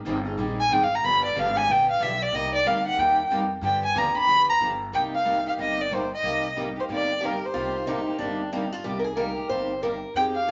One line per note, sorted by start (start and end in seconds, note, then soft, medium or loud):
0.05 0.37 G1 medium
0.05 0.17 D#3 medium
0.05 0.17 G3 medium
0.05 0.17 C4 loud
0.05 0.17 D#4 loud
0.05 0.17 G#4 medium
0.25 0.37 C4 medium
0.25 0.37 D#4 medium
0.25 0.38 G#4 medium
0.37 0.69 A#1 loud
0.37 0.58 D#3 medium
0.37 0.58 G3 medium
0.37 0.59 C4 medium
0.37 0.59 D#4 medium
0.37 0.59 G#4 medium
0.60 0.74 G#5 loud
0.69 1.02 G#1 loud
0.69 0.82 D#3 medium
0.69 0.82 G3 medium
0.69 0.82 C4 medium
0.69 0.82 D#4 medium
0.69 0.82 G#4 loud
0.69 0.85 G5 loud
0.83 0.96 F5 loud
0.95 1.06 A#5 medium
1.03 1.34 G1 medium
1.03 1.24 D3 medium
1.03 1.24 F3 medium
1.03 1.24 B3 medium
1.03 1.24 D4 medium
1.03 1.24 G4 medium
1.03 1.24 B5 loud
1.25 1.41 D5 medium
1.35 1.67 G#1 loud
1.35 1.46 D3 medium
1.35 1.47 F3 loud
1.35 1.47 B3 loud
1.35 1.47 D4 loud
1.35 1.47 G4 loud
1.35 1.58 F5 medium
1.55 1.68 B3 medium
1.55 1.68 D4 medium
1.55 1.68 G4 medium
1.55 1.73 G#5 loud
1.68 1.99 A#1 medium
1.68 1.89 D3 medium
1.68 1.89 F3 medium
1.68 1.89 B3 medium
1.68 1.89 D4 medium
1.68 1.89 G4 medium
1.68 1.89 G5 loud
1.91 2.04 F5 loud
2.00 2.32 B1 loud
2.00 2.11 D3 medium
2.00 2.12 F3 medium
2.00 2.12 B3 medium
2.00 2.12 D4 loud
2.00 2.12 G4 loud
2.00 2.24 E5 medium
2.22 2.36 D5 loud
2.32 2.64 C2 medium
2.32 2.54 C3 medium
2.32 2.54 G3 medium
2.32 2.54 A#3 medium
2.32 2.54 D#4 medium
2.32 2.55 G4 medium
2.32 2.54 D#5 loud
2.55 2.68 D5 loud
2.65 2.97 D2 medium
2.65 2.77 C3 medium
2.65 2.77 G3 loud
2.65 2.77 A#3 medium
2.65 2.77 D#4 loud
2.65 2.77 G4 loud
2.65 2.86 F5 medium
2.85 2.98 A#3 medium
2.85 2.98 D#4 medium
2.85 2.98 G4 medium
2.85 3.01 F#5 loud
2.97 3.29 D#2 medium
2.97 3.19 C3 medium
2.97 3.19 G3 medium
2.97 3.19 A#3 medium
2.97 3.19 D#4 medium
2.97 3.19 G4 medium
2.97 3.31 G5 loud
3.31 3.61 F2 loud
3.31 3.42 C3 medium
3.31 3.42 G3 medium
3.31 3.42 A#3 medium
3.31 3.42 D#4 medium
3.31 3.42 G4 loud
3.62 3.94 G2 loud
3.62 3.83 D3 medium
3.62 3.83 F3 medium
3.62 3.84 B3 medium
3.62 3.83 D4 medium
3.62 3.84 G4 medium
3.62 3.82 G5 loud
3.86 4.00 G#5 loud
3.94 4.27 D#2 medium
3.94 4.06 D3 medium
3.94 4.06 F3 medium
3.94 4.06 B3 loud
3.94 4.06 D4 loud
3.94 4.07 G4 loud
3.94 4.17 A#5 medium
4.15 4.27 B3 medium
4.15 4.27 D4 medium
4.15 4.27 G4 medium
4.15 4.47 B5 loud
4.27 4.59 D2 medium
4.27 4.48 D3 medium
4.27 4.48 F3 medium
4.27 4.49 B3 medium
4.27 4.48 D4 medium
4.27 4.49 G4 medium
4.49 4.56 A#5 loud
4.60 4.92 G1 loud
4.60 4.71 D3 loud
4.60 4.71 F3 medium
4.60 4.71 B3 medium
4.60 4.72 D4 loud
4.60 4.72 G4 loud
4.92 5.45 C2 medium
4.92 5.13 C3 medium
4.92 5.13 G3 medium
4.92 5.14 A#3 medium
4.92 7.28 D#4 medium
4.92 5.14 D#4 medium
4.92 5.14 G4 medium
4.92 5.03 G5 loud
5.15 5.44 F5 medium
5.25 5.36 C3 medium
5.25 5.36 G3 medium
5.25 5.37 A#3 medium
5.25 5.36 D#4 medium
5.25 5.37 G4 medium
5.44 5.57 A#3 soft
5.44 5.57 D#4 medium
5.44 5.57 G4 medium
5.44 5.53 F5 medium
5.57 6.10 G1 medium
5.57 5.78 C3 medium
5.57 5.78 G3 medium
5.57 5.79 A#3 medium
5.57 5.79 D#4 medium
5.57 5.79 G4 medium
5.57 5.82 D#5 medium
5.81 5.96 D5 medium
5.91 6.02 C3 medium
5.91 6.02 G3 medium
5.91 6.02 A#3 medium
5.91 6.02 D#4 medium
5.91 6.02 G4 medium
5.91 6.12 C5 medium
6.14 6.55 D#5 medium
6.23 6.75 C2 medium
6.23 6.43 C3 medium
6.23 6.44 G3 medium
6.23 6.44 A#3 medium
6.23 6.44 D#4 medium
6.23 6.44 G4 medium
6.56 6.67 C3 medium
6.56 6.67 G3 medium
6.56 6.67 A#3 medium
6.56 6.67 D#4 medium
6.56 6.68 G4 loud
6.76 6.88 A#3 soft
6.76 6.88 D#4 soft
6.76 6.88 G4 medium
6.80 6.85 C5 medium
6.89 7.41 G1 medium
6.89 7.09 C3 medium
6.89 7.09 G3 medium
6.89 7.09 A#3 medium
6.89 7.10 D#4 medium
6.89 7.10 G4 medium
6.93 7.27 D5 medium
7.21 7.33 C3 medium
7.21 7.33 G3 medium
7.21 7.33 A#3 medium
7.21 7.33 D#4 medium
7.21 7.55 G4 medium
7.21 7.33 G4 medium
7.25 7.47 A#4 medium
7.46 8.09 C5 medium
7.54 8.06 C2 medium
7.54 7.75 C3 medium
7.54 7.75 G3 medium
7.54 7.75 A#3 medium
7.54 7.75 D#4 medium
7.54 7.87 F4 medium
7.54 7.75 G4 medium
7.87 7.98 C3 medium
7.87 7.98 G3 medium
7.87 7.98 A#3 medium
7.87 8.18 D#4 medium
7.87 7.98 D#4 loud
7.87 7.99 G4 medium
8.06 8.19 A#3 soft
8.06 8.19 D#4 medium
8.06 8.18 G4 medium
8.19 8.71 G1 medium
8.19 8.40 C3 medium
8.19 8.40 G3 medium
8.19 8.40 A#3 medium
8.19 8.52 D4 medium
8.19 8.41 D#4 medium
8.19 8.40 G4 medium
8.52 8.63 C3 medium
8.52 8.63 G3 medium
8.52 8.63 A#3 medium
8.52 8.72 D#4 medium
8.52 8.64 D#4 medium
8.52 8.64 G4 medium
8.72 8.85 F4 medium
8.84 9.37 C2 medium
8.84 9.05 C3 medium
8.84 9.05 G3 medium
8.84 9.05 A#3 medium
8.84 9.05 D#4 medium
8.84 8.99 G4 medium
8.84 9.05 G4 medium
8.99 9.04 A#4 medium
9.04 9.16 G#4 loud
9.16 9.27 C3 medium
9.16 9.28 G3 medium
9.16 9.28 A#3 medium
9.16 9.28 D#4 medium
9.16 9.28 G4 loud
9.16 9.49 A#4 medium
9.36 9.49 A#3 soft
9.36 9.49 D#4 medium
9.36 9.49 G4 medium
9.49 10.02 G1 medium
9.49 9.70 C3 medium
9.49 9.70 G3 medium
9.49 9.70 A#3 medium
9.49 9.70 D#4 medium
9.49 9.70 G4 medium
9.49 9.80 C5 medium
9.82 9.93 C3 medium
9.82 9.94 G3 medium
9.82 9.93 A#3 medium
9.82 9.94 D#4 medium
9.82 9.94 G4 medium
9.82 10.13 A#4 medium
10.14 10.51 F2 medium
10.14 10.36 F3 medium
10.14 10.36 C4 medium
10.14 10.36 D#4 medium
10.14 10.46 G4 medium
10.14 10.37 G#4 medium
10.14 10.25 G5 loud
10.35 10.51 F5 medium
10.47 10.51 F3 medium
10.47 10.51 C4 medium